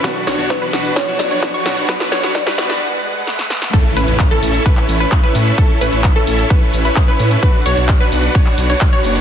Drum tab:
CC |----------------|----------------|x---------------|----------------|
HH |x-oxx-oxx-oxxxox|x-oxx-ox--------|x-oxx-oxx-oxxxox|x-oxx-oxx-ooxxox|
SH |x-xxx-xxxxxxx-xx|x-xxx-xx--------|x-xxxxxxxxxxxxxx|x-xxxxxxxxxxxxxx|
CP |----------------|----------------|----x----x--x---|----x-------x---|
SD |o-o-o-o-o-o-o-o-|oooooooo----oooo|----------------|----------------|
BD |o---o---o---o---|o---o-----------|o---o---o---o---|o---o---o---o---|

CC |----------------|
HH |x-oxx-oxx-oxxxox|
SH |x-xxxxxxxxxxxxxx|
CP |----x----x--x---|
SD |----------------|
BD |o---o---o---o---|